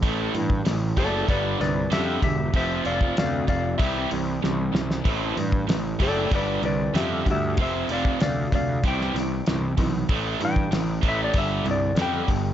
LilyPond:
<<
  \new Staff \with { instrumentName = "Electric slide guitar" } { \time 4/4 \key a \minor \tempo 4 = 96 r4. <a' d''>8 <b' d''>8 <b' d''>8 <g' e''>8 <g' e''>8 | <c'' e''>8 <d'' f''>8 <d'' f''>8 <d'' f''>8 e''8 r4. | r4. <a' d''>8 <b' d''>8 <b' d''>8 <g' e''>8 <g' e''>8 | <c'' e''>8 <d'' f''>8 <d'' f''>8 <d'' f''>8 g''8 r4. |
r8 g''4 e''16 d''16 e''8 d''8 g''4 | }
  \new Staff \with { instrumentName = "Distorted electric guitar" } { \clef bass \time 4/4 \key a \minor <a, e a>8 <a, e>8 <a, e>8 <a, e a>8 <g, d g>8 <g, d>8 <g, d g>8 <g, d>8 | <f c' f'>8 <f c' f'>8 <f c'>8 <f c'>8 <c g c'>8 <c g>8 <c g>8 <c g>8 | <a, e c'>8 <a, e>8 <a, e>8 <a, e c'>8 <g, d g>8 <g, d>8 <g, d g>8 <g, d>8 | <f, c f>8 <f, c f>8 <f, c>8 <f, c>8 <c e g>8 <c e>8 <c e>8 <c e>8 |
<a, e a>8 <a, e>8 <a, e>8 <a, e a>8 <g, d g>8 <g, d>8 <g, d g>8 <g, d>8 | }
  \new Staff \with { instrumentName = "Overdriven electric guitar" } { \clef bass \time 4/4 \key a \minor <a, e a>8 <a, e>8 <a, e>8 <a, e a>8 <g, d g>8 <g, d>8 <g, d g>8 <g, d>8 | <f, c f>8 <f, c f>8 <f, c>8 <f, c>8 <c e g>8 <c e>8 <c e>8 <c e>8 | <a, e a>8 <a, e>8 <a, e>8 <a, e a>8 <g, d g>8 <g, d>8 <g, d g>8 <g, d>8 | <f, c f>8 <f, c f>8 <f, c>8 <f, c>8 <c e g>8 <c e>8 <c e>8 <c e>8 |
<a, e a>8 <a, e>8 <a, e>8 <a, e a>8 <g, d g>8 <g, d>8 <g, d g>8 <g, d>8 | }
  \new Staff \with { instrumentName = "Picked electric bass" } { \clef bass \time 4/4 \key a \minor a,,8 g,8 a,,8 fis,,8 g,,8 c,8 f,8 e,,8 | f,,8 f,,8 d,8 f,,8 c,8 c,8 c,8 c,8 | a,,8 g,8 a,,8 fis,,8 g,,8 c,8 f,8 d,8 | f,,8 f,,8 d,8 d,8 c,8 c,8 c,8 b,,8 |
a,,8 g,8 a,,8 a,,8 g,,8 c,8 f,8 g,,8 | }
  \new DrumStaff \with { instrumentName = "Drums" } \drummode { \time 4/4 <hho bd>8 hho16 bd16 <hho sn>8 <hho bd>8 <hho bd>8 <hho sn>8 <hho sn>8 <hho bd>8 | <hho bd>8 hho16 bd16 <hho sn>8 <hho bd>8 <hho bd>8 hho8 sn8 sn16 sn16 | <hho bd>8 hho16 bd16 <hho sn>8 <hho bd>8 <hho bd>8 hho8 <hho sn>8 <hho bd>8 | <hho bd>8 hho16 bd16 <hho sn>8 <hho bd>8 <hho bd>16 sn16 <hho sn>8 <hho sn>8 <hho bd>8 |
<hho bd>8 hho16 bd16 <hho sn>8 <hho bd>8 <hho bd>8 hho8 <hho sn>8 <hho bd>8 | }
>>